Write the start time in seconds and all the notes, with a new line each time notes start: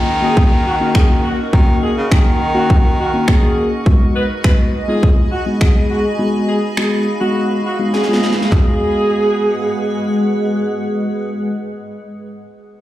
Already playing: D#3 A#4 D#5 F#5 C#6, downlifter
0.22 A#3 C#4 D#4 F#4 G#4
0.37 kick
0.66 F#4
0.80 A#3 C#4 D#4 F#4
0.95 G#4, finger snap, kick
1.10 A#3 C#4 D#4 F#4
1.24 F#4
1.53 D#3 A#3 C#4 D#4 F#4, kick
1.82 G#4
1.97 C#3
2.11 D#3 A#3 C#4 D#4 F#4 G#4, finger snap, kick
2.55 A#3 C#4 D#4 F#4
2.70 kick
2.99 F#4
3.13 A#3 C#4 D#4 F#4
3.28 G#4, finger snap, kick
3.42 A#3 C#4 D#4 F#4
3.86 G#3 B3 D#4 F#4 G#4 G#5 B5, kick
4.15 B4
4.44 G#3 B3 D#4 F#4 B4, finger snap, kick
4.88 G#3 B3 D#4 F4 G#4
5.03 kick
5.32 F#4
5.46 G#3 B3 D#4 F#4
5.61 G#4, finger snap, kick
5.75 G#3 B3 D#4 G#4
5.90 F#4
6.19 G#3 B3 D#4 F#4 F5
6.48 G#4
6.77 G#3 B3 D#4 F#4 G#4, finger snap
7.21 G#3 B3 D#4 F#4
7.65 F#4
7.79 G#3 B3 D#4 F#4
7.94 G#4, snare
8.04 snare
8.09 G#3 B3 D#4 F4
8.13 snare
8.23 snare
8.33 snare
8.42 snare
8.50 G#3 B3 D#4 G#4 B4 F#5, kick, clap, floor tom
8.54 F#4